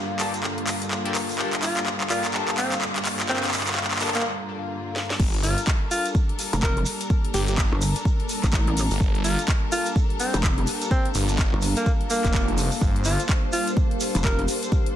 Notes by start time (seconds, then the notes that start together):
Already playing: G2 D3 A#3 F4 G4 A5
0.19 A#3 D4 G4 A4, clap, open hi-hat, shekere
0.34 closed hi-hat, shekere
0.43 clap, shekere
0.58 closed hi-hat
0.67 clap, open hi-hat, shekere
0.81 closed hi-hat, shekere
0.91 clap, shekere
1.05 A#3 D4 G4 A4, closed hi-hat
1.15 clap, open hi-hat, shekere
1.29 open hi-hat, shekere
1.39 A#3 D4 G4 A4, clap, shekere
1.53 clap, closed hi-hat
1.62 F4, clap, open hi-hat, shekere
1.77 clap, closed hi-hat, shekere
1.86 clap, shekere
2.01 clap
2.10 A#3 D4 F4 G4 A#4, clap, open hi-hat, shekere
2.24 clap, closed hi-hat, shekere
2.34 A#3 D4 G4 A4, clap, shekere
2.48 clap, closed hi-hat
2.58 C4, clap, open hi-hat, shekere
2.72 clap, closed hi-hat, shekere
2.81 clap, shekere
2.96 clap, closed hi-hat
3.05 clap, open hi-hat, shekere
3.20 clap, closed hi-hat, shekere
3.29 A#3 C4 D4 G4 A4, clap, shekere
3.36 clap
3.44 clap, closed hi-hat
3.48 clap
3.53 clap, open hi-hat, shekere
3.60 clap
3.67 clap, closed hi-hat, shekere
3.72 clap
3.77 clap, shekere
3.84 clap
3.91 clap
3.96 clap
4.00 A#3 D4 G4 A4, clap, open hi-hat, shekere
4.08 clap
4.14 A#3, clap, closed hi-hat, shekere
4.20 clap
4.96 snare
5.10 snare
5.20 G1 G3 D4 G4 A4 A#4, kick, crash, shekere
5.34 closed hi-hat
5.43 F4, open hi-hat, shekere
5.58 closed hi-hat, shekere
5.67 kick, clap
5.74 A#3
5.91 F4, open hi-hat, shekere
6.06 closed hi-hat, shekere
6.15 kick, shekere
6.29 closed hi-hat
6.39 A5, open hi-hat, shekere
6.53 F1, closed hi-hat, shekere
6.62 A#4, kick, clap
6.77 closed hi-hat
6.86 open hi-hat, shekere
7.00 closed hi-hat, shekere
7.10 kick, shekere
7.25 closed hi-hat
7.34 G1 G4, open hi-hat, shekere
7.47 G4, closed hi-hat, shekere
7.58 kick, clap, shekere
7.72 G1
7.81 open hi-hat, shekere
7.95 closed hi-hat, shekere
8.05 kick, shekere
8.20 closed hi-hat
8.29 open hi-hat, shekere
8.43 A1, kick, clap, closed hi-hat, shekere
8.53 kick, clap, shekere
8.67 closed hi-hat
8.77 open hi-hat, shekere
8.91 G1, open hi-hat, shekere
9.01 G1, kick, shekere
9.15 closed hi-hat
9.24 F4, open hi-hat, shekere
9.39 closed hi-hat, shekere
9.48 kick, clap
9.72 F4, open hi-hat, shekere
9.86 closed hi-hat, shekere
9.96 kick, shekere
10.10 closed hi-hat
10.20 C4 F5, open hi-hat, shekere
10.34 F1, closed hi-hat, shekere
10.43 kick, clap, shekere
10.58 closed hi-hat
10.67 open hi-hat, shekere
10.82 closed hi-hat, shekere
10.91 C4, kick, shekere
11.05 closed hi-hat
11.14 G1, open hi-hat, shekere
11.29 closed hi-hat, shekere
11.39 kick, clap, shekere
11.53 G1
11.62 open hi-hat, shekere
11.76 A#3, closed hi-hat, shekere
11.86 kick, shekere
12.01 closed hi-hat
12.10 A#3, open hi-hat, shekere
12.24 F1, kick, clap, closed hi-hat, shekere
12.34 kick, clap, shekere
12.48 closed hi-hat
12.58 open hi-hat, shekere
12.72 open hi-hat, shekere
12.81 G1 C5, kick, shekere
12.96 closed hi-hat
13.04 F4, open hi-hat, shekere
13.20 closed hi-hat, shekere
13.29 kick, clap
13.53 F4, open hi-hat, shekere
13.67 closed hi-hat, shekere
13.77 kick, shekere
13.91 closed hi-hat
14.00 A5, open hi-hat, shekere
14.15 F1, closed hi-hat, shekere
14.24 A#4, kick, clap, shekere
14.39 closed hi-hat
14.48 open hi-hat, shekere
14.63 closed hi-hat, shekere
14.72 kick, shekere
14.86 closed hi-hat